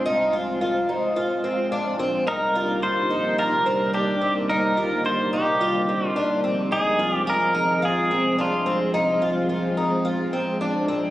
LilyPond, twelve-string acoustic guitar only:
\new Staff \with { instrumentName = "Twelve-string acoustic guitar" } { \time 4/4 \key f \dorian \tempo 4 = 108 ees'8 f'8 f'8 ees'8 f'8 c'8 d'8 c'8 | ees'8 f'8 f'8 ees'8 f'8 c'8 d'8 c'8 | ees'8 f'8 f'8 ees'8 f'8 c'8 d'8 c'8 | ees'8 f'8 f'8 ees'8 f'8 c'8 d'8 c'8 |
ees'8 f'8 f'8 ees'8 f'8 c'8 d'8 c'8 | }